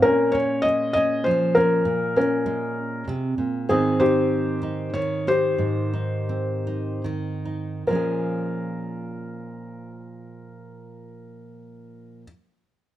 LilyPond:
<<
  \new Staff \with { instrumentName = "Felt piano" } { \time 3/4 \key bes \dorian \tempo 4 = 89 << { bes'8 des''8 ees''8 ees''8 c''8 bes'8~ | bes'8 bes'4. r4 | aes'8 c''4. des''8 c''8~ | c''2 r4 |
bes'2.~ | bes'2. | } \\ { des'4. r4. | r8 des'4. r4 | c'8 g'4. r8 g'8~ | g'2 r4 |
r2. | r2. | } >> }
  \new Staff \with { instrumentName = "Nylon-string guitar" } { \time 3/4 \key bes \dorian << { f'8 des'8 aes8 des'4 des'8 | r8 des'8 aes2 | <ees c' ees'>8 ees'4 ees'4 ees'8 | r8 ees'8 c'8 ees'4 ees'8 |
<f aes des' aes'>2.~ | <f aes des' aes'>2. | } \\ { bes,2 f4 | bes,2 c8 bes,8 | aes,2 ees4 | aes,2 ees4 |
bes,2.~ | bes,2. | } >> }
>>